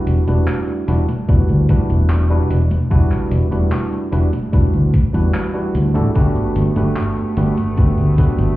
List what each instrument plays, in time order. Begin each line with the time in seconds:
Already playing: tine electric piano G3 D4 E4 F#4 B4
0.07 fingered electric bass E1, closed hi-hat
0.27 fingered electric bass E1, tine electric piano G3 D4 E4 F#4 B4, closed hi-hat, high conga
0.48 clap, closed hi-hat, high conga
0.68 closed hi-hat, high conga
0.87 fingered electric bass E1, tine electric piano G3 D4 E4 F#4 B4, closed hi-hat
1.09 closed hi-hat, high conga
1.28 fingered electric bass E1, tine electric piano G3 D4 E4 F#4 B4, kick, closed hi-hat, high conga
1.49 fingered electric bass D2, closed hi-hat, high conga
1.69 tine electric piano G3 D4 E4 F#4 B4, kick, closed hi-hat
1.90 fingered electric bass E1, closed hi-hat, high conga
2.10 clap, closed hi-hat, high conga
2.30 tine electric piano G3 D4 E4 F#4 B4, closed hi-hat, high conga
2.50 fingered electric bass E1, closed hi-hat
2.71 closed hi-hat, high conga
2.90 fingered electric bass E1, tine electric piano G3 D4 E4 F#4 B4, kick, closed hi-hat, high conga
3.11 clap, closed hi-hat, high conga
3.31 fingered electric bass E1, closed hi-hat
3.51 fingered electric bass E1, tine electric piano G3 D4 E4 F#4 B4, closed hi-hat, high conga
3.72 clap, closed hi-hat, high conga
3.92 closed hi-hat, high conga
4.12 fingered electric bass E1, tine electric piano G3 D4 E4 F#4 B4, closed hi-hat
4.33 closed hi-hat, high conga
4.52 fingered electric bass E1, tine electric piano G3 D4 E4 F#4 B4, kick, closed hi-hat, high conga
4.73 fingered electric bass D2, closed hi-hat, high conga
4.94 kick, closed hi-hat
5.13 fingered electric bass E2, tine electric piano G3 D4 E4 F#4 B4, closed hi-hat, high conga
5.34 clap, closed hi-hat, high conga
5.54 tine electric piano G3 D4 E4 F#4 B4, closed hi-hat, high conga
5.75 fingered electric bass D2, closed hi-hat
5.94 fingered electric bass A1, tine electric piano G3 D4 E4 F#4 A4, closed hi-hat, high conga
6.15 fingered electric bass G1, tine electric piano A3 D4 F#4 G4 B4, string section A3 B3, kick, closed hi-hat, high conga
6.36 closed hi-hat, high conga
6.56 fingered electric bass G1, closed hi-hat
6.76 fingered electric bass G1, tine electric piano A3 D4 F#4 G4 B4, closed hi-hat, high conga
6.96 clap, closed hi-hat, high conga
7.17 closed hi-hat, high conga
7.37 fingered electric bass G1, tine electric piano A3 D4 F#4 G4 B4, closed hi-hat
7.57 closed hi-hat, high conga
7.77 fingered electric bass G1, tine electric piano A3 D4 F#4 G4 B4, kick, closed hi-hat, high conga
7.98 fingered electric bass D2, closed hi-hat, high conga
8.18 tine electric piano A3 D4 F#4 G4 B4, kick, closed hi-hat
8.38 fingered electric bass G1, closed hi-hat, high conga